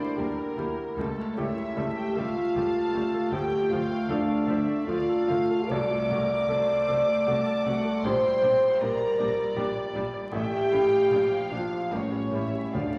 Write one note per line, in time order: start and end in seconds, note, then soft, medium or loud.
0.00 0.95 D2 medium
0.00 0.56 D4 medium
0.00 0.57 E4 soft
0.00 0.17 G4 soft
0.00 0.37 A#4 soft
0.00 0.18 C5 soft
0.00 0.59 D5 medium
0.17 0.25 D2 soft
0.17 0.26 D3 soft
0.17 0.26 G3 soft
0.17 0.26 A#3 soft
0.17 0.50 G4 soft
0.17 0.98 A#4 soft
0.37 0.70 A#4 soft
0.57 0.66 D2 soft
0.57 0.67 D3 soft
0.57 0.67 G3 soft
0.57 0.67 A#3 soft
0.57 0.90 E4 soft
0.78 0.98 A#4 soft
0.97 1.05 C#2 medium
0.97 3.28 C#2 medium
0.97 1.07 C#3 soft
0.97 1.07 G3 soft
0.97 1.07 A3 soft
0.97 1.37 A4 soft
1.18 1.49 A3 soft
1.37 1.45 C#2 soft
1.37 1.45 C#3 medium
1.37 1.46 G3 soft
1.37 1.46 A3 soft
1.37 1.92 E4 medium
1.37 1.69 G4 soft
1.37 1.76 C#5 soft
1.37 1.93 E5 medium
1.57 1.88 A3 soft
1.76 1.84 C#2 soft
1.76 1.84 C#3 soft
1.76 1.84 G3 soft
1.76 1.85 A3 soft
1.76 2.08 A4 soft
1.76 2.56 E5 medium
1.96 2.28 A3 soft
1.96 2.18 G4 medium
1.96 2.16 G5 soft
2.16 2.24 C#2 medium
2.16 2.24 C#3 soft
2.16 2.25 G3 soft
2.16 2.25 A3 soft
2.16 3.34 F4 medium
2.16 2.48 A4 soft
2.16 3.30 F5 medium
2.37 2.68 A3 soft
2.56 2.64 C#2 soft
2.56 2.64 C#3 soft
2.56 2.64 G3 soft
2.56 2.64 A3 soft
2.56 2.87 G4 soft
2.56 3.32 A5 medium
2.75 3.06 A4 soft
2.94 3.02 C#2 soft
2.94 3.02 C#3 medium
2.94 3.03 G3 soft
2.94 3.25 A3 soft
2.94 3.03 A3 soft
3.14 3.33 A4 soft
3.32 3.40 D2 medium
3.32 5.67 D2 medium
3.32 3.41 D3 medium
3.32 3.41 F3 soft
3.32 3.41 A3 soft
3.32 3.72 G4 medium
3.32 3.70 G5 medium
3.32 4.08 G5 medium
3.52 3.82 A3 soft
3.70 3.78 D2 medium
3.70 3.79 D3 medium
3.70 3.79 F3 soft
3.70 3.80 A3 soft
3.70 4.02 F4 soft
3.70 4.10 F4 medium
3.70 4.09 F5 medium
3.91 4.21 A3 soft
4.08 4.16 D2 medium
4.08 4.17 D3 medium
4.08 4.18 F3 soft
4.08 4.18 A3 soft
4.08 4.88 D4 medium
4.08 4.40 A4 medium
4.08 4.87 D5 medium
4.08 4.48 F5 medium
4.29 4.60 A3 soft
4.47 4.55 D2 medium
4.47 4.56 D3 soft
4.47 4.56 F3 soft
4.47 4.56 A3 soft
4.47 4.79 A4 soft
4.47 4.87 E5 medium
4.68 5.00 A3 soft
4.86 4.94 D2 medium
4.86 4.95 D3 medium
4.86 4.96 F3 soft
4.86 4.96 A3 soft
4.86 5.69 F4 medium
4.86 5.21 F4 soft
4.86 5.27 D5 medium
4.86 5.69 F5 medium
5.09 5.42 A4 soft
5.27 5.37 D2 soft
5.27 5.36 D3 medium
5.27 5.38 F3 soft
5.27 5.63 A3 soft
5.27 5.38 A3 soft
5.27 5.70 F5 medium
5.51 5.71 A4 soft
5.69 5.78 C2 medium
5.69 8.01 C2 medium
5.69 5.78 C3 medium
5.69 5.80 F#3 medium
5.69 5.80 A3 soft
5.69 6.10 A4 medium
5.69 8.05 D5 medium
5.69 8.00 D6 medium
5.91 6.22 A3 soft
6.10 6.19 C2 medium
6.10 6.19 C3 medium
6.10 6.19 F#3 soft
6.10 6.19 A3 medium
6.10 6.42 F#4 soft
6.10 6.49 A#4 medium
6.30 6.61 A3 soft
6.49 6.57 C2 medium
6.49 6.58 C3 medium
6.49 6.59 F#3 medium
6.49 6.58 A3 medium
6.49 6.80 A4 medium
6.49 7.27 C5 medium
6.68 7.00 A3 soft
6.88 6.97 C2 medium
6.88 6.96 C3 medium
6.88 6.97 F#3 soft
6.88 6.96 A3 soft
6.88 7.19 A4 medium
7.08 7.39 A3 soft
7.27 7.35 C2 medium
7.27 7.35 C3 medium
7.27 7.35 F#3 medium
7.27 7.36 A3 medium
7.27 7.58 F#4 medium
7.27 7.65 A5 medium
7.46 7.77 A4 soft
7.65 7.74 C2 medium
7.65 7.73 C3 medium
7.65 7.74 F#3 soft
7.65 7.74 A3 soft
7.65 7.97 A3 soft
7.65 8.04 F#5 medium
7.85 8.04 A4 medium
8.04 8.12 A#1 medium
8.04 10.29 A#1 medium
8.04 8.12 A#2 medium
8.04 8.13 G3 medium
8.04 8.13 D4 medium
8.04 8.80 C5 medium
8.04 8.81 G5 medium
8.04 8.81 C6 medium
8.25 8.55 G3 soft
8.43 8.51 A#1 medium
8.43 8.51 A#2 medium
8.43 8.52 G3 soft
8.43 8.52 D4 soft
8.43 8.73 G4 medium
8.63 8.92 G3 soft
8.80 8.89 A#1 medium
8.80 8.88 A#2 medium
8.80 8.90 G3 medium
8.80 8.90 D4 medium
8.80 9.56 A#4 medium
8.80 9.11 D5 medium
8.80 10.33 D5 medium
8.80 9.56 A#5 medium
9.00 9.30 G3 soft
9.18 9.26 A#1 medium
9.18 9.26 A#2 soft
9.18 9.27 G3 soft
9.18 9.28 D4 soft
9.18 9.49 D5 medium
9.37 9.68 G3 medium
9.56 9.64 A#1 medium
9.56 9.64 A#2 medium
9.56 9.65 G3 medium
9.56 9.65 D4 medium
9.56 9.87 G4 medium
9.75 10.06 D5 soft
9.94 10.03 A#1 medium
9.94 10.02 A#2 medium
9.94 10.03 G3 soft
9.94 10.26 G3 soft
9.94 10.03 D4 soft
10.14 10.33 D5 soft
10.32 11.08 A1 medium
10.32 10.42 A1 medium
10.32 10.41 A2 medium
10.32 10.42 A3 medium
10.32 10.42 C#4 soft
10.32 11.47 G4 medium
10.32 10.71 E5 medium
10.32 11.47 G5 medium
10.52 10.83 A3 soft
10.72 10.80 A1 soft
10.72 10.80 A2 soft
10.72 10.81 A3 soft
10.72 10.81 C#4 soft
10.72 11.03 E4 soft
10.72 11.92 F5 medium
10.90 11.11 A3 soft
11.11 11.89 A#1 medium
11.11 11.19 A#1 soft
11.11 11.19 A#2 medium
11.11 11.20 F3 soft
11.11 11.20 D4 soft
11.29 11.62 F3 soft
11.50 11.59 A#1 soft
11.50 11.59 A#2 soft
11.50 11.59 F3 soft
11.50 11.83 D4 soft
11.50 11.59 D4 soft
11.50 11.92 F4 medium
11.50 11.91 F5 medium
11.71 11.91 F3 soft
11.91 12.71 A1 medium
11.91 11.99 A1 soft
11.91 12.00 A2 soft
11.91 12.00 G3 soft
11.91 12.00 A#3 soft
11.91 12.73 C#4 medium
11.91 12.33 C#5 soft
11.91 12.74 C#5 medium
12.11 12.44 G3 soft
12.32 12.40 A1 soft
12.32 12.40 A2 soft
12.32 12.41 G3 soft
12.32 12.40 A#3 soft
12.32 12.66 E4 soft
12.32 12.73 E5 soft
12.54 12.74 G3 soft
12.74 12.98 D2 soft
12.74 12.82 D2 soft
12.74 12.98 D3 medium
12.74 12.83 D3 soft
12.74 12.82 F3 soft
12.74 12.82 A3 soft
12.74 12.98 D4 medium
12.74 12.98 D5 soft
12.74 12.98 F5 soft
12.94 12.98 F3 soft